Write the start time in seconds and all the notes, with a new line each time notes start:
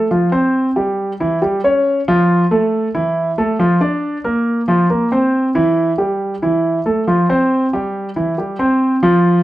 0.11 F3 F4
0.32 C4 C5
0.76 G3 G4
1.20 E3 E4
1.42 G3 G4
1.64 C#4 C#5
2.08 F3 F4
2.51 A3 A4
2.95 E3 E4
3.38 A3 A4
3.59 F3 F4
3.81 D4 D5
4.24 A#3 A#4
4.68 F3 F4
4.90 A#3 A#4
5.12 C4 C5
5.55 E3 E4
5.98 G3 G4
6.42 E3 E4
6.86 A3 A4
7.07 F3 F4
7.30 C4 C5
7.73 G3 G4
8.16 E3 E4
8.38 G3 G4
8.59 C4 C5
9.03 F3 F4